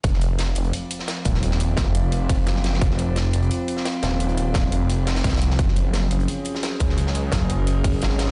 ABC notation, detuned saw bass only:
X:1
M:4/4
L:1/8
Q:1/4=173
K:Fphr
V:1 name="Detuned saw bass" clef=bass
F,,,3 F,,, z3 E,,,- | E,,,2 F,,,3 F,,, G,,,2 | F,,,3 F,,, z3 E,,,- | E,,,2 E,,, F,,,3 C,,2 |
G,,,3 G,,, z3 D,,- | D,,2 G,,,3 G,,, A,,,2 |]